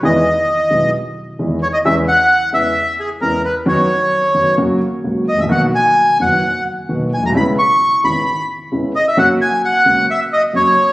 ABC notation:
X:1
M:4/4
L:1/16
Q:1/4=132
K:B
V:1 name="Bandoneon"
d8 z6 c d | e2 f4 e4 G2 A2 B2 | c8 z6 d e | f2 g4 f4 z4 g a |
b2 c'4 b4 z4 d e | f2 g2 f4 e2 d2 c4 |]
V:2 name="Grand piano" clef=bass
[E,,D,E,G,B,E]2 z4 [B,,,B,,D,G,B,E]2 z4 [E,,D,E,G,B,E]2 z2 | [E,,C,E,G,B,E]2 z4 [E,,C,E,G,B,E]2 z4 [E,,C,E,G,B,E]2 z2 | [F,,D,F,B,F]2 z4 [F,,D,F,B,F]2 [F,,C,F,A,F]2 z2 [C,,C,F,A,F]2 z/2 G,,,/2 =A,,,/2 ^A,,,/2 | [B,,,B,,D,A,B,F]2 z4 [F,,,F,,D,A,B,F]2 z4 [B,,,B,,D,A,B,F]2 z/2 A,,,/2 B,,,/2 =C,,/2 |
[C,,C,G,B,E]2 z4 [G,,,G,,C,G,B,E]2 z4 [C,,C,G,B,E]2 z2 | [F,,C,F,A,F]2 z4 [C,,C,F,A,F]2 z4 [F,,C,F,A,F]2 z2 |]